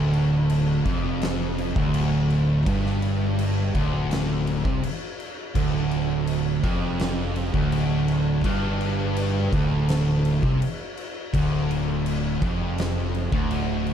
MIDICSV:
0, 0, Header, 1, 4, 480
1, 0, Start_track
1, 0, Key_signature, -1, "minor"
1, 0, Tempo, 722022
1, 1776, Time_signature, 4, 2, 24, 8
1, 9263, End_track
2, 0, Start_track
2, 0, Title_t, "Distorted electric guitar"
2, 0, Program_c, 0, 30
2, 0, Note_on_c, 0, 38, 114
2, 567, Note_off_c, 0, 38, 0
2, 570, Note_on_c, 0, 41, 108
2, 1166, Note_off_c, 0, 41, 0
2, 1172, Note_on_c, 0, 38, 105
2, 1766, Note_off_c, 0, 38, 0
2, 1769, Note_on_c, 0, 43, 109
2, 2485, Note_off_c, 0, 43, 0
2, 2493, Note_on_c, 0, 38, 113
2, 3085, Note_off_c, 0, 38, 0
2, 3088, Note_on_c, 0, 48, 99
2, 3204, Note_off_c, 0, 48, 0
2, 3691, Note_on_c, 0, 38, 108
2, 4413, Note_off_c, 0, 38, 0
2, 4413, Note_on_c, 0, 41, 112
2, 5006, Note_off_c, 0, 41, 0
2, 5011, Note_on_c, 0, 38, 103
2, 5620, Note_off_c, 0, 38, 0
2, 5620, Note_on_c, 0, 43, 112
2, 6330, Note_off_c, 0, 43, 0
2, 6336, Note_on_c, 0, 38, 117
2, 6929, Note_off_c, 0, 38, 0
2, 6936, Note_on_c, 0, 48, 105
2, 7048, Note_off_c, 0, 48, 0
2, 7535, Note_on_c, 0, 38, 120
2, 8249, Note_off_c, 0, 38, 0
2, 8255, Note_on_c, 0, 41, 106
2, 8850, Note_off_c, 0, 41, 0
2, 8856, Note_on_c, 0, 38, 108
2, 9263, Note_off_c, 0, 38, 0
2, 9263, End_track
3, 0, Start_track
3, 0, Title_t, "Fingered electric bass"
3, 0, Program_c, 1, 33
3, 0, Note_on_c, 1, 26, 100
3, 546, Note_off_c, 1, 26, 0
3, 567, Note_on_c, 1, 29, 99
3, 1145, Note_off_c, 1, 29, 0
3, 1170, Note_on_c, 1, 26, 101
3, 1746, Note_off_c, 1, 26, 0
3, 1770, Note_on_c, 1, 31, 107
3, 2466, Note_off_c, 1, 31, 0
3, 2492, Note_on_c, 1, 26, 98
3, 3067, Note_off_c, 1, 26, 0
3, 3093, Note_on_c, 1, 36, 104
3, 3205, Note_off_c, 1, 36, 0
3, 3692, Note_on_c, 1, 26, 95
3, 4387, Note_off_c, 1, 26, 0
3, 4411, Note_on_c, 1, 29, 85
3, 4986, Note_off_c, 1, 29, 0
3, 5012, Note_on_c, 1, 26, 107
3, 5587, Note_off_c, 1, 26, 0
3, 5615, Note_on_c, 1, 31, 102
3, 6308, Note_off_c, 1, 31, 0
3, 6333, Note_on_c, 1, 26, 90
3, 6908, Note_off_c, 1, 26, 0
3, 6933, Note_on_c, 1, 36, 104
3, 7045, Note_off_c, 1, 36, 0
3, 7539, Note_on_c, 1, 26, 100
3, 8232, Note_off_c, 1, 26, 0
3, 8255, Note_on_c, 1, 29, 97
3, 8830, Note_off_c, 1, 29, 0
3, 8857, Note_on_c, 1, 26, 99
3, 9263, Note_off_c, 1, 26, 0
3, 9263, End_track
4, 0, Start_track
4, 0, Title_t, "Drums"
4, 89, Note_on_c, 9, 49, 63
4, 156, Note_off_c, 9, 49, 0
4, 330, Note_on_c, 9, 49, 87
4, 396, Note_off_c, 9, 49, 0
4, 569, Note_on_c, 9, 49, 60
4, 570, Note_on_c, 9, 36, 110
4, 635, Note_off_c, 9, 49, 0
4, 636, Note_off_c, 9, 36, 0
4, 808, Note_on_c, 9, 49, 83
4, 820, Note_on_c, 9, 38, 115
4, 875, Note_off_c, 9, 49, 0
4, 886, Note_off_c, 9, 38, 0
4, 1053, Note_on_c, 9, 49, 64
4, 1120, Note_off_c, 9, 49, 0
4, 1170, Note_on_c, 9, 36, 106
4, 1237, Note_off_c, 9, 36, 0
4, 1289, Note_on_c, 9, 49, 96
4, 1355, Note_off_c, 9, 49, 0
4, 1531, Note_on_c, 9, 49, 63
4, 1597, Note_off_c, 9, 49, 0
4, 1771, Note_on_c, 9, 36, 122
4, 1771, Note_on_c, 9, 49, 96
4, 1838, Note_off_c, 9, 36, 0
4, 1838, Note_off_c, 9, 49, 0
4, 1902, Note_on_c, 9, 38, 35
4, 1968, Note_off_c, 9, 38, 0
4, 2009, Note_on_c, 9, 49, 66
4, 2075, Note_off_c, 9, 49, 0
4, 2251, Note_on_c, 9, 49, 93
4, 2318, Note_off_c, 9, 49, 0
4, 2492, Note_on_c, 9, 36, 100
4, 2493, Note_on_c, 9, 49, 61
4, 2558, Note_off_c, 9, 36, 0
4, 2560, Note_off_c, 9, 49, 0
4, 2733, Note_on_c, 9, 49, 96
4, 2744, Note_on_c, 9, 38, 117
4, 2800, Note_off_c, 9, 49, 0
4, 2811, Note_off_c, 9, 38, 0
4, 2972, Note_on_c, 9, 49, 64
4, 3039, Note_off_c, 9, 49, 0
4, 3092, Note_on_c, 9, 36, 111
4, 3158, Note_off_c, 9, 36, 0
4, 3214, Note_on_c, 9, 49, 100
4, 3280, Note_off_c, 9, 49, 0
4, 3455, Note_on_c, 9, 49, 66
4, 3522, Note_off_c, 9, 49, 0
4, 3692, Note_on_c, 9, 36, 109
4, 3692, Note_on_c, 9, 49, 89
4, 3758, Note_off_c, 9, 36, 0
4, 3759, Note_off_c, 9, 49, 0
4, 3931, Note_on_c, 9, 49, 56
4, 3997, Note_off_c, 9, 49, 0
4, 4170, Note_on_c, 9, 49, 85
4, 4237, Note_off_c, 9, 49, 0
4, 4411, Note_on_c, 9, 49, 60
4, 4412, Note_on_c, 9, 36, 98
4, 4477, Note_off_c, 9, 49, 0
4, 4478, Note_off_c, 9, 36, 0
4, 4650, Note_on_c, 9, 49, 84
4, 4662, Note_on_c, 9, 38, 117
4, 4717, Note_off_c, 9, 49, 0
4, 4728, Note_off_c, 9, 38, 0
4, 4891, Note_on_c, 9, 49, 67
4, 4957, Note_off_c, 9, 49, 0
4, 5012, Note_on_c, 9, 36, 109
4, 5078, Note_off_c, 9, 36, 0
4, 5133, Note_on_c, 9, 49, 85
4, 5199, Note_off_c, 9, 49, 0
4, 5373, Note_on_c, 9, 49, 60
4, 5439, Note_off_c, 9, 49, 0
4, 5612, Note_on_c, 9, 36, 110
4, 5613, Note_on_c, 9, 49, 84
4, 5679, Note_off_c, 9, 36, 0
4, 5679, Note_off_c, 9, 49, 0
4, 5854, Note_on_c, 9, 49, 70
4, 5921, Note_off_c, 9, 49, 0
4, 6093, Note_on_c, 9, 49, 88
4, 6159, Note_off_c, 9, 49, 0
4, 6333, Note_on_c, 9, 36, 100
4, 6336, Note_on_c, 9, 49, 62
4, 6399, Note_off_c, 9, 36, 0
4, 6402, Note_off_c, 9, 49, 0
4, 6572, Note_on_c, 9, 49, 103
4, 6583, Note_on_c, 9, 38, 108
4, 6638, Note_off_c, 9, 49, 0
4, 6650, Note_off_c, 9, 38, 0
4, 6814, Note_on_c, 9, 49, 75
4, 6880, Note_off_c, 9, 49, 0
4, 6934, Note_on_c, 9, 36, 100
4, 7001, Note_off_c, 9, 36, 0
4, 7059, Note_on_c, 9, 49, 92
4, 7125, Note_off_c, 9, 49, 0
4, 7296, Note_on_c, 9, 49, 69
4, 7362, Note_off_c, 9, 49, 0
4, 7537, Note_on_c, 9, 36, 113
4, 7540, Note_on_c, 9, 49, 99
4, 7603, Note_off_c, 9, 36, 0
4, 7606, Note_off_c, 9, 49, 0
4, 7783, Note_on_c, 9, 49, 64
4, 7849, Note_off_c, 9, 49, 0
4, 8017, Note_on_c, 9, 49, 87
4, 8083, Note_off_c, 9, 49, 0
4, 8256, Note_on_c, 9, 49, 64
4, 8257, Note_on_c, 9, 36, 99
4, 8323, Note_off_c, 9, 36, 0
4, 8323, Note_off_c, 9, 49, 0
4, 8498, Note_on_c, 9, 49, 88
4, 8509, Note_on_c, 9, 38, 109
4, 8564, Note_off_c, 9, 49, 0
4, 8575, Note_off_c, 9, 38, 0
4, 8739, Note_on_c, 9, 49, 60
4, 8806, Note_off_c, 9, 49, 0
4, 8858, Note_on_c, 9, 36, 121
4, 8924, Note_off_c, 9, 36, 0
4, 8979, Note_on_c, 9, 49, 84
4, 9045, Note_off_c, 9, 49, 0
4, 9218, Note_on_c, 9, 49, 54
4, 9263, Note_off_c, 9, 49, 0
4, 9263, End_track
0, 0, End_of_file